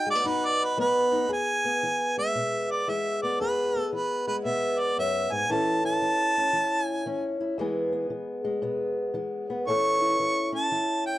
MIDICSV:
0, 0, Header, 1, 3, 480
1, 0, Start_track
1, 0, Key_signature, 4, "major"
1, 0, Tempo, 523104
1, 1202, Time_signature, 4, 2, 24, 8
1, 10262, End_track
2, 0, Start_track
2, 0, Title_t, "Harmonica"
2, 0, Program_c, 0, 22
2, 95, Note_on_c, 0, 74, 95
2, 247, Note_on_c, 0, 71, 94
2, 261, Note_off_c, 0, 74, 0
2, 419, Note_on_c, 0, 74, 98
2, 433, Note_off_c, 0, 71, 0
2, 589, Note_on_c, 0, 71, 96
2, 603, Note_off_c, 0, 74, 0
2, 731, Note_off_c, 0, 71, 0
2, 738, Note_on_c, 0, 71, 101
2, 1196, Note_off_c, 0, 71, 0
2, 1220, Note_on_c, 0, 80, 96
2, 1968, Note_off_c, 0, 80, 0
2, 2004, Note_on_c, 0, 76, 91
2, 2487, Note_on_c, 0, 74, 77
2, 2501, Note_off_c, 0, 76, 0
2, 2651, Note_on_c, 0, 76, 82
2, 2665, Note_off_c, 0, 74, 0
2, 2952, Note_off_c, 0, 76, 0
2, 2957, Note_on_c, 0, 74, 75
2, 3113, Note_off_c, 0, 74, 0
2, 3124, Note_on_c, 0, 71, 84
2, 3571, Note_off_c, 0, 71, 0
2, 3622, Note_on_c, 0, 71, 81
2, 3905, Note_off_c, 0, 71, 0
2, 3923, Note_on_c, 0, 71, 79
2, 3997, Note_off_c, 0, 71, 0
2, 4081, Note_on_c, 0, 76, 86
2, 4410, Note_on_c, 0, 74, 81
2, 4423, Note_off_c, 0, 76, 0
2, 4571, Note_off_c, 0, 74, 0
2, 4577, Note_on_c, 0, 76, 84
2, 4888, Note_on_c, 0, 80, 93
2, 4902, Note_off_c, 0, 76, 0
2, 5053, Note_on_c, 0, 81, 106
2, 5066, Note_off_c, 0, 80, 0
2, 5361, Note_off_c, 0, 81, 0
2, 5370, Note_on_c, 0, 81, 119
2, 6269, Note_off_c, 0, 81, 0
2, 6269, Note_on_c, 0, 80, 119
2, 6765, Note_off_c, 0, 80, 0
2, 8878, Note_on_c, 0, 85, 104
2, 9633, Note_off_c, 0, 85, 0
2, 9680, Note_on_c, 0, 81, 98
2, 10121, Note_off_c, 0, 81, 0
2, 10150, Note_on_c, 0, 79, 82
2, 10262, Note_off_c, 0, 79, 0
2, 10262, End_track
3, 0, Start_track
3, 0, Title_t, "Steel-string acoustic guitar"
3, 0, Program_c, 1, 25
3, 0, Note_on_c, 1, 54, 68
3, 0, Note_on_c, 1, 63, 62
3, 0, Note_on_c, 1, 66, 82
3, 60, Note_on_c, 1, 56, 62
3, 140, Note_off_c, 1, 56, 0
3, 140, Note_on_c, 1, 59, 57
3, 200, Note_off_c, 1, 54, 0
3, 216, Note_off_c, 1, 63, 0
3, 223, Note_on_c, 1, 42, 68
3, 231, Note_on_c, 1, 63, 64
3, 680, Note_off_c, 1, 42, 0
3, 707, Note_off_c, 1, 59, 0
3, 711, Note_on_c, 1, 54, 67
3, 718, Note_on_c, 1, 59, 72
3, 1015, Note_off_c, 1, 63, 0
3, 1026, Note_on_c, 1, 63, 67
3, 1163, Note_off_c, 1, 54, 0
3, 1177, Note_off_c, 1, 63, 0
3, 1179, Note_off_c, 1, 66, 0
3, 1180, Note_off_c, 1, 59, 0
3, 1181, Note_on_c, 1, 40, 74
3, 1185, Note_on_c, 1, 68, 70
3, 1511, Note_on_c, 1, 59, 56
3, 1639, Note_off_c, 1, 40, 0
3, 1679, Note_on_c, 1, 52, 57
3, 1995, Note_on_c, 1, 56, 59
3, 2128, Note_off_c, 1, 52, 0
3, 2157, Note_off_c, 1, 59, 0
3, 2160, Note_on_c, 1, 47, 62
3, 2161, Note_on_c, 1, 59, 56
3, 2609, Note_off_c, 1, 47, 0
3, 2632, Note_off_c, 1, 56, 0
3, 2640, Note_on_c, 1, 52, 64
3, 2645, Note_on_c, 1, 56, 59
3, 2954, Note_off_c, 1, 59, 0
3, 2966, Note_on_c, 1, 59, 58
3, 3089, Note_off_c, 1, 52, 0
3, 3095, Note_off_c, 1, 68, 0
3, 3122, Note_on_c, 1, 40, 75
3, 3134, Note_on_c, 1, 68, 61
3, 3442, Note_off_c, 1, 59, 0
3, 3452, Note_on_c, 1, 59, 56
3, 3570, Note_off_c, 1, 40, 0
3, 3603, Note_on_c, 1, 52, 56
3, 3912, Note_off_c, 1, 56, 0
3, 3923, Note_on_c, 1, 56, 48
3, 4051, Note_off_c, 1, 52, 0
3, 4076, Note_off_c, 1, 59, 0
3, 4083, Note_on_c, 1, 47, 59
3, 4087, Note_on_c, 1, 59, 63
3, 4530, Note_off_c, 1, 47, 0
3, 4571, Note_on_c, 1, 42, 59
3, 4874, Note_off_c, 1, 42, 0
3, 4878, Note_on_c, 1, 44, 60
3, 5030, Note_off_c, 1, 68, 0
3, 5037, Note_off_c, 1, 44, 0
3, 5040, Note_on_c, 1, 45, 70
3, 5046, Note_off_c, 1, 59, 0
3, 5046, Note_on_c, 1, 52, 66
3, 5047, Note_off_c, 1, 56, 0
3, 5053, Note_on_c, 1, 61, 64
3, 5061, Note_on_c, 1, 64, 69
3, 5070, Note_on_c, 1, 69, 66
3, 5360, Note_off_c, 1, 64, 0
3, 5363, Note_on_c, 1, 64, 57
3, 5489, Note_off_c, 1, 45, 0
3, 5519, Note_off_c, 1, 52, 0
3, 5523, Note_on_c, 1, 52, 59
3, 5839, Note_off_c, 1, 61, 0
3, 5850, Note_on_c, 1, 61, 51
3, 5970, Note_off_c, 1, 52, 0
3, 5992, Note_on_c, 1, 52, 61
3, 5993, Note_off_c, 1, 64, 0
3, 5997, Note_on_c, 1, 64, 60
3, 6444, Note_off_c, 1, 52, 0
3, 6473, Note_off_c, 1, 61, 0
3, 6477, Note_on_c, 1, 52, 60
3, 6484, Note_on_c, 1, 61, 56
3, 6791, Note_off_c, 1, 64, 0
3, 6795, Note_on_c, 1, 64, 54
3, 6926, Note_off_c, 1, 52, 0
3, 6943, Note_off_c, 1, 61, 0
3, 6955, Note_off_c, 1, 69, 0
3, 6955, Note_on_c, 1, 40, 80
3, 6964, Note_on_c, 1, 52, 62
3, 6969, Note_on_c, 1, 56, 65
3, 6976, Note_off_c, 1, 64, 0
3, 6979, Note_on_c, 1, 59, 58
3, 6983, Note_on_c, 1, 68, 63
3, 7262, Note_off_c, 1, 59, 0
3, 7273, Note_on_c, 1, 59, 54
3, 7405, Note_off_c, 1, 40, 0
3, 7430, Note_off_c, 1, 52, 0
3, 7434, Note_on_c, 1, 52, 56
3, 7738, Note_off_c, 1, 56, 0
3, 7749, Note_on_c, 1, 56, 54
3, 7884, Note_off_c, 1, 52, 0
3, 7904, Note_off_c, 1, 59, 0
3, 7910, Note_on_c, 1, 47, 63
3, 7915, Note_on_c, 1, 59, 59
3, 8361, Note_off_c, 1, 47, 0
3, 8379, Note_off_c, 1, 56, 0
3, 8385, Note_on_c, 1, 52, 59
3, 8392, Note_on_c, 1, 56, 50
3, 8705, Note_off_c, 1, 59, 0
3, 8716, Note_on_c, 1, 59, 57
3, 8839, Note_off_c, 1, 52, 0
3, 8869, Note_off_c, 1, 68, 0
3, 8871, Note_on_c, 1, 45, 74
3, 8874, Note_off_c, 1, 56, 0
3, 8878, Note_on_c, 1, 52, 61
3, 8881, Note_off_c, 1, 59, 0
3, 8882, Note_on_c, 1, 61, 60
3, 8893, Note_on_c, 1, 64, 58
3, 8898, Note_on_c, 1, 69, 70
3, 9186, Note_off_c, 1, 64, 0
3, 9190, Note_on_c, 1, 64, 60
3, 9321, Note_off_c, 1, 45, 0
3, 9351, Note_off_c, 1, 52, 0
3, 9355, Note_on_c, 1, 52, 56
3, 9653, Note_off_c, 1, 61, 0
3, 9656, Note_on_c, 1, 61, 55
3, 9803, Note_off_c, 1, 52, 0
3, 9832, Note_on_c, 1, 52, 56
3, 9835, Note_off_c, 1, 64, 0
3, 9838, Note_on_c, 1, 64, 59
3, 10262, Note_off_c, 1, 52, 0
3, 10262, Note_off_c, 1, 61, 0
3, 10262, Note_off_c, 1, 64, 0
3, 10262, Note_off_c, 1, 69, 0
3, 10262, End_track
0, 0, End_of_file